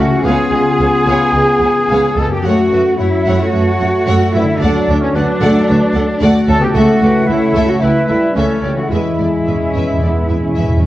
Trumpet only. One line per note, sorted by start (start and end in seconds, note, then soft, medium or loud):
0.00 0.27 F#4 medium
0.26 2.20 G#4 medium
2.18 2.32 A4 medium
2.32 2.38 G4 soft
2.46 2.98 F#4 medium
3.00 3.42 E4 soft
3.41 4.34 F#4 medium
4.35 4.47 E4 medium
4.61 5.03 D4 medium
5.01 5.16 C#4 medium
5.15 6.21 D4 medium
6.49 6.64 A4 medium
6.62 6.77 G4 medium
6.75 7.28 F#4 medium
7.29 7.71 E4 medium
7.70 7.82 F#4 medium
7.82 8.08 E4 medium
8.09 8.35 E4 medium
8.36 8.76 C#4 soft
8.77 8.93 F#4 soft
8.91 10.86 E4 soft